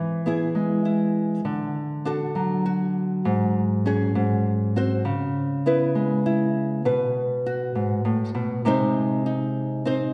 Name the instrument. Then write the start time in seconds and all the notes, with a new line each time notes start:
nylon-string guitar
Already playing: E3
0.26 B3 E4 G#4
0.55 G#3
0.85 E4
1.45 D3
2.05 D4 F#4 A4
2.35 F#3
2.66 F#4
3.25 G#2
3.86 C#4 F#4 G#4
4.15 G#2
4.76 C4 F#4 C5
5.05 C#3
5.66 B3 E4 B4
5.95 G#3
6.26 E4
6.85 B2 B4
7.46 F#4
7.75 G#2
8.05 A2
8.35 B2
8.65 C3 G#3 C4 D#4 C5
9.26 D#4
9.85 C4 D#4 C5